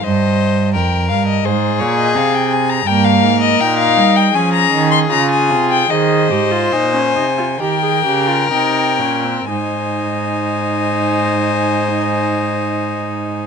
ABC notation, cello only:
X:1
M:4/4
L:1/8
Q:1/4=75
K:Ab
V:1 name="Cello" clef=bass
G,,2 F,, G,, A,, B,, C,2 | G,, A,, B,, G, F, E, D, C, | E, A,, B,, C, E, D, C, B,, | A,,8 |]